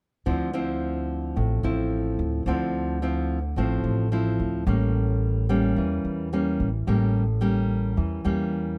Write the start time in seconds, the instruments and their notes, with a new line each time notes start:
0.26 upright bass D2, nylon-string guitar D3 F3 C4 E4
0.53 nylon-string guitar F3 C4 E4
1.36 upright bass A1, nylon-string guitar A2
1.63 upright bass A1, nylon-string guitar F3 C4 E4
2.19 upright bass D2
2.46 upright bass D2, nylon-string guitar D3 F3 C4 E4
3.02 nylon-string guitar F3 C4 E4
3.56 upright bass A1, nylon-string guitar A2 F3 C4 E4
3.84 upright bass A1
4.12 nylon-string guitar F3 C4 E4
4.39 upright bass D2
4.67 upright bass A1, nylon-string guitar A2 G3 A#3 C#4
5.49 nylon-string guitar G3 A#3 C#4
5.76 upright bass E2, nylon-string guitar E3
6.05 upright bass E2
6.33 nylon-string guitar G3 A#3 C#4
6.60 upright bass A1
6.87 upright bass A1, nylon-string guitar A2 G3 A#3 C#4
7.41 nylon-string guitar G3 A#3 C#4
7.97 upright bass E2, nylon-string guitar E3
8.24 upright bass E2, nylon-string guitar G3 A#3 C#4